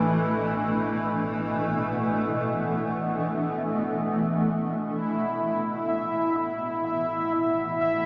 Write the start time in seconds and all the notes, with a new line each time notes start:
Already playing: A1 A2 B2 E3 A3 D4
4.91 A1 A2 B2 E4 E5
5.85 E3
6.62 A3